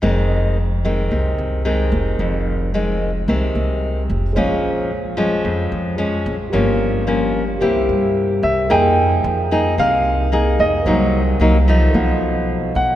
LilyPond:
<<
  \new Staff \with { instrumentName = "Grand piano" } { \time 4/4 \key f \minor \tempo 4 = 111 r1 | r1 | r1 | r2. r8 e''8 |
g''2 f''4. ees''8~ | ees''2.~ ees''8 fis''8 | }
  \new Staff \with { instrumentName = "Tine electric piano" } { \time 4/4 \key f \minor r1 | r1 | <aes' c'' des'' f''>1 | <g' bes' des'' f''>2 <g' bes' c'' e''>2 |
<aes' bes' ees'' g''>1 | <bes' c'' ees'' ges''>2 <a' dis'' eis'' fis''>2 | }
  \new Staff \with { instrumentName = "Nylon-string guitar" } { \clef bass \time 4/4 \key f \minor << { <ees aes c'>4 r8 <ees aes c'>4. <ees aes c'>4~ | <ees aes c'>4 <ees aes c'>8 r8 <ees aes c'>4. r8 | <f aes des'>4 r8 <f aes des'>4. <f aes des'>8 r8 | <f bes des'>4 <f bes des'>8 r8 <bes e' g'>4. r8 |
<bes ees' aes'>4 r8 <bes ees' aes'>8 <bes ees' aes'>4 <bes ees' aes'>4 | <ges bes ees'>8 r8 <ges bes ees'>8 <f a ees'>2 r8 | } \\ { f,2 c2 | f,2 c2 | bes,2 f,2 | g,2 c2 |
f2 c2 | c2 b,2 | } >> }
  \new Staff \with { instrumentName = "Upright bass" } { \clef bass \time 4/4 \key f \minor f,,2 c,8 c,4 f,,8 | f,,2 c,8 c,4 f,,8 | bes,,2 f,8 f,4 bes,,8 | g,,2 c,8 g,4 c,8 |
f,4 f,4 c,4. f,8 | c,4 c,4 b,,4. b,,8 | }
>>